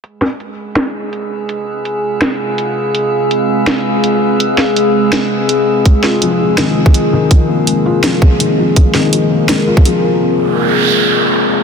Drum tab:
HH |x---x---x---x---|x---x---x---x---|x---x---x---x---|x---x---x---x---|
SD |--o-----o-------|--------o-------|--------o-------|--o-----o-------|
BD |----------------|----------------|----------------|----------------|

HH |x---x---x---x---|x---x---x---x---|x---x---x---x---|----------------|
SD |--o-----o-------|--------o-------|--o-----o-------|----------------|
BD |o----------o----|o---------o-----|o----------o----|----------------|